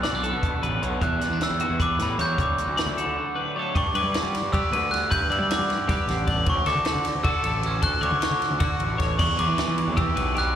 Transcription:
Already playing: B2 D3
0.03 B2 F#3 G3 B3 D4 D5, snare, closed hi-hat
0.13 B1 A3
0.23 D3 F#3 B3 D4 A4, closed hi-hat
0.33 B2
0.43 B2, kick, closed hi-hat
0.62 A1 C#3 F#3 B3 D4 B4, closed hi-hat
0.82 B1 B2 D3 F#3 B3 D4 C#5, closed hi-hat
1.01 E2 E3 G3 B3 E4 E5 F#6, kick, closed hi-hat
1.21 B3 D5, snare, closed hi-hat
1.30 E2 D4
1.40 E3 G3 B3 E4 E6, snare, closed hi-hat
1.44 G3
1.50 E2
1.59 E3 G3 B3 E4 F#4, closed hi-hat
1.70 E2
1.80 D4 B4 D6, kick, closed hi-hat
1.98 A2 B2 G3 B3 E4, snare, closed hi-hat
2.02 B5
2.17 E2 E3 G3 B3 E4 F#4 C#5 G6, snare, closed hi-hat
2.37 D2 D3 F#3 A3 D4, kick, closed hi-hat
2.42 D6
2.58 F#4, closed hi-hat
2.67 D2
2.75 D3 F#3 A3 D4 D5, snare, closed hi-hat
2.86 D2
2.96 D3 F#3 A3 D4 A4, closed hi-hat
3.06 D3
3.19 F#4
3.35 A2 F#3 A3 D4 B4
3.54 D3 F#3 A3 D4 C#5
3.59 A4
3.75 G2 D5 C#6, kick, ride
3.94 G2 E4 B4 D6, ride
4.03 G3
4.14 D3, snare, ride
4.23 G3
4.35 snare, ride
4.43 G2
4.53 G3 G4 B4 E6, kick, ride
4.72 D2 D3 B4, ride
4.91 B3 G4 F#6, snare, ride
5.10 G2 B4 G6, kick, ride
5.30 G2 E4 D5 E6, ride
5.40 G3
5.51 D3 D6, snare, ride
5.59 G3
5.70 snare, ride
5.78 G2
5.89 G3 G4 B4, kick, snare, ride
6.08 A1 D3, snare, ride
6.27 B3 D5, kick, ride
6.46 D2 C#5 C#6, kick, ride
6.66 D2 F#4 A4 D6, snare, ride
6.75 D3
6.85 D3, snare, ride
6.95 D3
7.05 snare, ride
7.15 D2
7.24 D3 F#4 A4 E6, kick, ride
7.43 A1 A2 A4, ride
7.63 C#4 F#4, ride
7.82 D2 A4 F#6, kick, ride
8.01 D2 F#4 C#5 D6, ride
8.12 D3
8.21 D3 C#6, snare, ride
8.31 D3
8.42 snare, ride
8.50 D2
8.60 D3 F#4, kick, ride
8.80 A1, ride
8.98 D2 C#5, kick, snare, ride
9.18 E2 E3 G3 B3 E4 D5 C#6, kick, crash
9.37 E2 G3 B3 D4 E4 B4 D6, ride
9.48 E3
9.57 E3 G3 B3 E4, snare, ride
9.68 E3
9.78 ride
9.87 E2
9.97 E3 G4 E6, kick, ride
10.16 B1 B2 G3 B3 E4 B4, ride
10.35 E3 G3 B3 E4 G4 F#6, snare, ride
10.40 G3

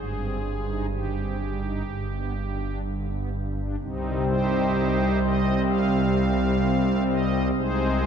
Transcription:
Already playing: G1 G2 G#4
0.15 C4
0.41 G3
0.65 D#4
0.89 D#3 G4
1.15 C4
1.40 G3
1.61 D#4
1.87 G1 G2
2.11 B3
2.35 G3
2.61 D4
2.86 D3
3.08 B3
3.32 G3
3.56 D4
3.80 C2 C3 G3 C4 D#4
4.27 D#4 G4 C5
5.23 D#5
5.67 F5
7.08 D#5
7.56 C2 C3 G#3 C4 D#4 G#4 C5

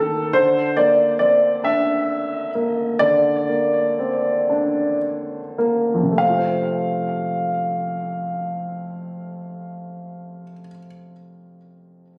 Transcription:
Already playing: D#3 A#3 A4
0.33 D3 C5
0.76 A#3 D5
1.19 C4 D5
1.64 D4 E5
2.55 A#3
2.99 D3 D5
3.49 A#3
3.99 C4
4.50 D4
5.58 A#3
5.94 F2
6.03 C3
6.12 A3
6.18 C4 F5
6.29 F4
6.38 C5

